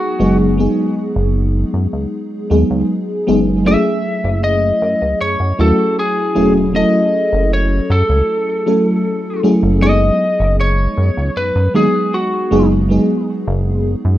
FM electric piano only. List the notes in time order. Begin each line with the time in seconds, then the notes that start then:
Already playing: F#3 G#3 B3 D#4 G#4
0.19 F#3 G#3 B3 D#4 G#4
0.57 F#3 G#3 B3 D#4 G#4
2.50 F#3 G#3 B3 D#4 G#4
3.27 F#3 G#3 B3 D#4 G#4
3.65 F#3 A3 C#4 E4 G#4
5.58 F#3 A3 C#4 E4 F#4
6.35 F#3 A3 C#4 E4 G#4
6.73 F#3 A3 C#4 E4 A4
8.66 F#3 A3 C#4 E4 A4
9.43 F#3 A3 C#4 E4 G#4
9.81 F#3 G#3 B3 D#4 G#4
11.74 F#3 G#3 B3 D#4 G#4
12.51 F#3 G#3 B3 D#4 G#4
12.89 F#3 G#3 B3 D#4 G#4